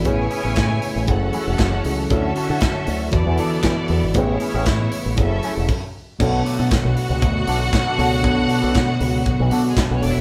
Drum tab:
CC |--------|--------|------x-|x-------|
HH |xoxoxoxo|xoxoxoxo|xoxoxo--|-oxoxoxo|
CP |--x---x-|--x---x-|--x-----|--x---x-|
SD |--o---o-|--o---o-|--o-----|--o---o-|
BD |o-o-o-o-|o-o-o-o-|o-o-o-o-|o-o-o-o-|

CC |--------|
HH |xoxoxoxo|
CP |--x---x-|
SD |--o---o-|
BD |o-o-o-o-|